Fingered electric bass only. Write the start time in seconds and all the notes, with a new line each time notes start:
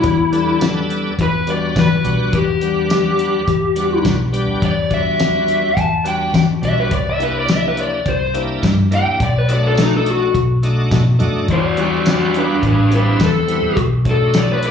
0.04 E2
1.19 E2
1.76 E3
2.05 B1
2.33 E2
3.48 E2
4.05 B1
4.48 muted fingered electric bass stroke
4.62 E2
5.77 E2
6.34 E3
6.62 B1
6.91 C2
8.06 C2
8.63 G2
9.06 muted fingered electric bass stroke
9.20 B1
10.35 B1
10.92 B2
11.20 F#2
11.49 E2
12.63 A1
13.20 E2
13.63 muted fingered electric bass stroke
13.77 B1